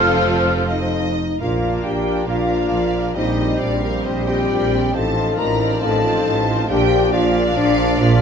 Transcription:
Already playing: double bass section F1, cello section F2, french horn section C3, bassoon F3, viola section F3 C4, violin section F4 A4 C5, clarinet A4, flute section F6
0.68 french horn section D#4, flute section D#5, violin section D#5
1.40 tuba A#1, double bass section A#1, cello section A#2, trombone section F3 D4, bassoon A#3, french horn section F4, clarinet D5, flute section F5, violin section F5
1.62 viola section D4 F4
1.83 tuba A#1, double bass section A#1, cello section A#2, french horn section G4, flute section G5, violin section G5
2.06 viola section D4 F4
2.27 tuba A#1, double bass section A#1, cello section A#2, bassoon A#3, french horn section F4, violin section A#4 F5, clarinet D5, flute section F5
2.50 viola section D4 F4
2.71 tuba A#1, double bass section A#1, cello section A#2, violin section D5
2.95 viola section D4 F4
3.15 tuba A#1, double bass section A#1, cello section A#2, bassoon G3, trombone section G3 C4, viola section C4 G4, french horn section D#4, clarinet C5, flute section D#5, violin section D#5
3.38 viola section C4 G4
3.59 tuba A#1, double bass section A#1, cello section A#2, french horn section D4, violin section D5 F5, flute section D5
3.82 french horn section A#3, viola section C4 G4, violin section A#4, flute section A#4
4.04 tuba A#1, double bass section A#1, cello section A#2, bassoon G3, french horn section C4, flute section C5, violin section C5 D#5, clarinet C5
4.27 viola section C4 G4, french horn section G4, violin section G5, flute section G5
4.50 tuba A#1, double bass section A#1, cello section A#2, violin section D5
4.72 viola section C4 G4
4.93 tuba A1, double bass section A1, cello section A2, trombone section F3 D#4, bassoon F3, french horn section A4, violin section C5 A5, clarinet D#5, flute section A5
5.16 viola section C4 F4
5.37 tuba A1, double bass section A1, cello section A2, french horn section A#4, violin section D5 A#5, flute section A#5
5.60 viola section C4 F4
5.81 tuba A1, double bass section A1, cello section A2, bassoon F3, french horn section A4, clarinet D#5, flute section A5, violin section A5
6.03 viola section C4 F4
6.25 tuba A1, double bass section A1, cello section A2, violin section C5
6.48 viola section C4 F4
6.69 tuba A#1, double bass section A#1, cello section A#2, trombone section A#2 D4, bassoon F3, viola section A#3 D4, french horn section G4, violin section A#4 G5, clarinet D5, flute section G5
6.91 viola section A#3 D4
7.13 tuba A#1, double bass section A#1, cello section A#2, bassoon F3, french horn section F4, violin section D5 F5, clarinet D5, flute section F5
7.34 viola section A#3 D4
7.55 tuba A#1, double bass section A#1, cello section A#2, bassoon F3, french horn section D4, clarinet D5, flute section D5, violin section D5 F5
7.78 viola section A#3 D4
7.99 tuba A#1, double bass section A#1, cello section A#2, bassoon F3, french horn section F4, clarinet D5, violin section D5 F5, flute section F5

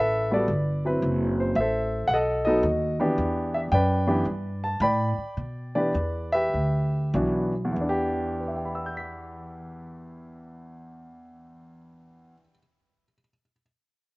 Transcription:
Already playing: upright bass A1, grand piano A4 B4 E5
0.31 grand piano G3 B3 F#4 A4 B4 D5
0.48 upright bass G1
0.85 grand piano F#3 C4 E4 B4
1.02 upright bass F#1
1.40 grand piano C5
1.55 upright bass A1, grand piano E5
1.60 grand piano A4 C5
2.08 upright bass B1, grand piano F#5
2.14 grand piano A4 D#5
2.45 grand piano F#3 B3 D#4 A4 D#5
2.49 grand piano F#4
2.63 upright bass D#2
3.00 grand piano E3 B3 D4 G4
3.18 upright bass E2
3.54 grand piano E5
3.72 upright bass F#2, grand piano B4 D5 G5
4.07 grand piano E3 B3 D4 G4
4.25 upright bass G2
4.64 grand piano A5
4.80 upright bass A2, grand piano D5 G5 B5
5.18 muted upright bass stroke
5.37 upright bass B2
5.75 grand piano E3 B3 D4 G4 B4 D5
5.95 upright bass E2
6.32 grand piano G4 B4 E5
6.54 upright bass D2
7.14 upright bass B1, grand piano E3 B3 D4 F#4
7.65 grand piano E2
7.72 grand piano E3
7.76 upright bass E2
7.81 grand piano D4
7.89 grand piano G4
8.40 grand piano B4
8.48 grand piano E5
8.56 grand piano G5
8.65 grand piano B5
8.75 grand piano E6
8.86 grand piano G6
8.97 grand piano B6

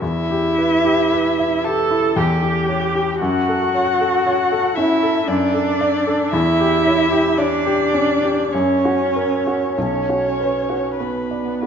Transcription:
0.02 grand piano E2, cello E4, violin E5
0.31 grand piano G4
0.58 grand piano B4
0.85 grand piano G4
1.13 grand piano B4
1.39 grand piano E5
1.64 grand piano G4, cello A4, violin A5
1.91 grand piano E4
2.16 grand piano E2, cello G4, violin G5
2.42 grand piano G4
2.69 grand piano C#5
2.95 grand piano G4
3.20 grand piano F#2, cello F#4, violin F#5
3.48 grand piano A4
3.74 grand piano C#5
4.00 grand piano A4
4.26 grand piano C#5
4.52 grand piano A4
4.76 grand piano C#4, cello E4, violin E5
5.03 grand piano A4
5.27 grand piano F#2, cello D4, violin D5
5.54 grand piano A4
5.81 grand piano D5
6.07 grand piano A4
6.32 grand piano E2, cello E4, violin E5
6.60 grand piano G4
6.87 grand piano C#5
7.11 grand piano G4
7.37 cello D4, grand piano C#5, violin D5
7.66 grand piano G4
7.94 grand piano C#4
8.23 grand piano G4
8.52 grand piano F#2, cello C#4, violin C#5
8.85 grand piano F#4
9.16 grand piano A#4
9.47 grand piano F#4
9.76 grand piano B1, cello C#4, violin C#5
10.09 grand piano F#4
10.40 grand piano B4
10.69 grand piano F#4
10.98 cello B3, violin B4, grand piano B4
11.31 grand piano D5
11.63 grand piano F#4

